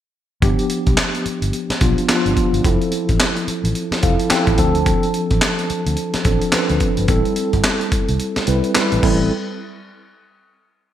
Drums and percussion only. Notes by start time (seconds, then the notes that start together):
0.42 kick, closed hi-hat
0.59 closed hi-hat
0.70 closed hi-hat
0.87 kick, closed hi-hat
0.97 snare, clap, closed hi-hat
1.15 closed hi-hat
1.26 closed hi-hat
1.42 closed hi-hat
1.53 closed hi-hat
1.70 snare, closed hi-hat
1.81 kick, closed hi-hat
1.98 closed hi-hat
2.09 snare, clap, closed hi-hat
2.26 closed hi-hat
2.37 kick, closed hi-hat
2.54 closed hi-hat
2.65 kick, closed hi-hat
2.82 closed hi-hat
2.92 closed hi-hat
3.09 kick, closed hi-hat
3.20 snare, clap, closed hi-hat
3.37 closed hi-hat
3.48 closed hi-hat
3.65 closed hi-hat
3.75 closed hi-hat
3.92 snare, closed hi-hat
4.03 kick, closed hi-hat
4.20 closed hi-hat
4.30 snare, clap, closed hi-hat
4.47 kick, closed hi-hat
4.58 kick, closed hi-hat
4.75 closed hi-hat
4.86 kick, closed hi-hat
5.03 closed hi-hat
5.14 closed hi-hat
5.31 kick, closed hi-hat
5.42 snare, clap, closed hi-hat
5.59 closed hi-hat
5.70 closed hi-hat
5.87 closed hi-hat
5.97 closed hi-hat
6.14 snare, closed hi-hat
6.25 kick, closed hi-hat
6.42 closed hi-hat
6.52 snare, clap, closed hi-hat
6.70 closed hi-hat
6.80 kick, closed hi-hat
6.97 closed hi-hat
7.08 kick, closed hi-hat
7.25 closed hi-hat
7.36 closed hi-hat
7.53 kick, closed hi-hat
7.64 snare, clap, closed hi-hat
7.81 closed hi-hat
7.92 kick, closed hi-hat
8.09 closed hi-hat
8.20 closed hi-hat
8.36 snare, closed hi-hat
8.47 closed hi-hat
8.64 closed hi-hat
8.75 snare, clap, closed hi-hat
8.92 closed hi-hat
9.03 kick, crash